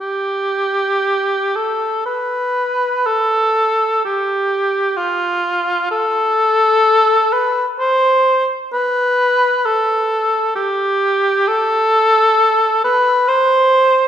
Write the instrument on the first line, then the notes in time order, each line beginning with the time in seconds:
cor anglais
0.01 G4
1.55 A4
2.06 B4
3.06 A4
4.05 G4
4.97 F4
5.91 A4
7.33 B4
7.80 C5
8.73 B4
9.66 A4
10.56 G4
11.48 A4
12.84 B4
13.28 C5